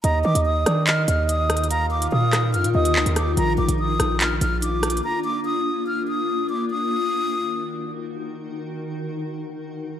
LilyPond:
<<
  \new Staff \with { instrumentName = "Flute" } { \time 4/4 \key ees \minor \tempo 4 = 144 bes''8 d'''8 ees'''4 f'''8 f'''8 ees'''4 | bes''8 d'''8 ees'''4 f'''8 ees'''4 d'''8 | bes''8 d'''8 ees'''4 f'''8 f'''8 d'''4 | bes''8 d'''8 ees'''4 f'''8 ees'''4 d'''8 |
ees'''2. r4 | r1 | }
  \new Staff \with { instrumentName = "Soft synth lead" } { \time 4/4 \key ees \minor ees''4. d''8 ees''2 | f''2~ f''8 ees''8 r4 | r1 | r1 |
r1 | r1 | }
  \new Staff \with { instrumentName = "Ambient pad" } { \time 4/4 \key ees \minor <ees ees' f' bes'>1~ | <ees ees' f' bes'>1 | <bes d'>1~ | <bes d'>1 |
<ees ees' ges' bes'>1~ | <ees ees' ges' bes'>1 | }
  \new Staff \with { instrumentName = "808-style bass" } { \clef bass \time 4/4 \key ees \minor ees,8 ees16 ees,8. ees4 ees,4.~ | ees,4 bes,4 ges,16 bes,16 ees,8 d,16 ees,8. | bes,,8 bes,,16 bes,,8. bes,,4 bes,,4. | r1 |
r1 | r1 | }
  \new DrumStaff \with { instrumentName = "Drums" } \drummode { \time 4/4 hh8. hh16 r8 <hh ss>8 <hc hh>8 hh8 \tuplet 3/2 { hh16 r16 r16 <hh ss>16 hh16 hh16 } | hh8. hh16 r8 <hc hh ss>8 hh16 hh8 hh16 hc16 hh16 <hh ss>8 | hh8. hh16 r8 <hh ss>8 <hc hh>8 hh8 \tuplet 3/2 { hh16 r16 r16 <hh ss>16 hh16 hh16 } | r4 r4 r4 r4 |
r4 r4 r4 r4 | r4 r4 r4 r4 | }
>>